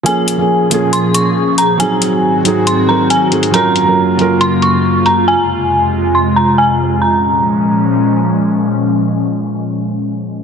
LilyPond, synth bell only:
\new Staff \with { instrumentName = "Synth bell" } { \time 4/4 \key bes \minor \tempo 4 = 138 aes''2 c'''8 des'''4 bes''8 | aes''2 c'''8 bes''8 aes''8 r8 | bes''2 c'''8 des'''4 bes''8 | aes''2 c'''8 bes''8 aes''8 r8 |
bes''2. r4 | r1 | }